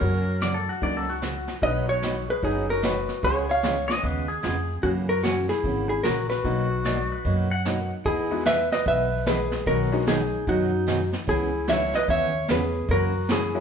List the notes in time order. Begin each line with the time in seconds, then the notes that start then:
Already playing: A#4 C#5
0.00 F#2 C#3 F#3 A#3 C#4 F#4, brush sweep, kick
0.41 C#3 F#3 A#3 C#4 F#4 D5, snare, hi-hat pedal
0.54 A4
0.69 F#4
0.82 C#2 C#3 F#3 A#3 C#4 D#4 F#4 D5, brush sweep, kick
0.97 A4
1.10 F#4
1.22 C#3 F#3 A#3 C#4 F#4, snare, hi-hat pedal
1.48 snare
1.62 B1 F#3 B3 C#4 D#4 F#4 B4 C#5 D#5, brush sweep, kick
1.88 F#4 C#5
2.02 B3 D#4 F#4 C#5, snare, hi-hat pedal
2.29 G#4 B4
2.42 F#1 F#3 B3 C#4 D#4 F#4 G#4 C#5, brush sweep, kick
2.70 F#4 A#4
2.82 B3 D#4 F#4 B4 C#5, snare, hi-hat pedal
3.08 snare
3.23 C#2 C#3 G#3 B3 C#4 F4 G#4 C#5, brush sweep, kick
3.49 C#5 F5
3.63 C#3 G#3 B3 F4 G#4, snare, hi-hat pedal
3.88 G#3 B3 C#4 F4 D#5, snare
4.03 D#2 C#3 G#3 B3 F4 G#4 B4, brush sweep, kick
4.28 G#4
4.43 F2 C#3 G#3 B3 F4 G#4, snare, hi-hat pedal
4.83 F#2 C#3 E3 A#3 C#4 F#4, brush sweep, kick
5.08 F#4 A#4
5.23 C#3 E3 A#3 C#4 F#4, snare, hi-hat pedal
5.49 E4 G#4, snare
5.64 G#1 C#3 E3 A#3 C#4 F#4, brush sweep, kick
5.89 E4 G#4
6.03 A#1 C#3 E3 A#3 C#4 F#4 A#4, snare, hi-hat pedal
6.29 F#4 B4, snare
6.44 B1 B2 F#3 A#3 B3 D#4 F#4, brush sweep, kick
6.84 B2 F#3 A#3 D#4 F#4 D5, snare, hi-hat pedal
7.12 B4
7.25 F#2 B2 F#3 A#3 D#4 F#4, brush sweep, kick
7.51 F#5
7.65 B2 F#3 A#3 B3 D#4 F#4 F#5, snare, hi-hat pedal
8.05 E2 E3 B3 D#4 E4 G#4, brush sweep, kick
8.31 G#3 B3 D#4 E4 F#4
8.45 E3 B3 D#4 G#4 B4 E5, snare, hi-hat pedal
8.72 B4 D#5, snare
8.86 B1 E3 B3 D#4 G#4 B4 E5, brush sweep, kick
9.26 E3 B3 D#4 G#4 B4, snare, hi-hat pedal
9.51 snare
9.66 B1 B2 D#3 F#3 B3 D#4 F#4 G#4 A#4, brush sweep, kick
9.92 G#3 B3 C#4 D#4 F#4
10.07 B2 D#3 F#3 B3 D#4 G#4, snare, hi-hat pedal
10.47 F#2 B2 D#3 F#3 B3 D#4 F#4 G#4, brush sweep, kick
10.87 B2 D#3 F#3 B3 D#4 G#4, snare, hi-hat pedal
11.13 snare
11.27 C#2 C#3 E3 B3 C#4 E4 G#4, brush sweep, kick
11.68 C#3 E3 F#3 B3 C#4 D#4 E4 G#4 C#5 E5, snare, hi-hat pedal
11.93 B4 D#5, snare
12.08 D#2 C#3 E3 B3 C#4 G#4 C#5 E5, brush sweep, kick
12.48 E2 C#3 E3 B3 C#4 G#4 B4, snare, hi-hat pedal
12.88 F#2 C#3 E3 A#3 C#4 F#4 A#4, brush sweep, kick
13.29 C#3 E3 A#3 C#4 E4 F#4 G#4, snare, hi-hat pedal
13.54 F#3 A#3 C#4 E4 F#4